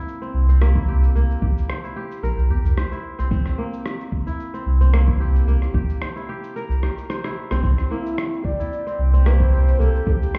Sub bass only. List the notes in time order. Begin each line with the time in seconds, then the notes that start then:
0.34 C2
1.15 C2
2.23 A#1
2.50 E2
2.64 C2
3.31 C2
4.66 C2
5.47 C2
7.64 C2
8.99 C2
9.80 C2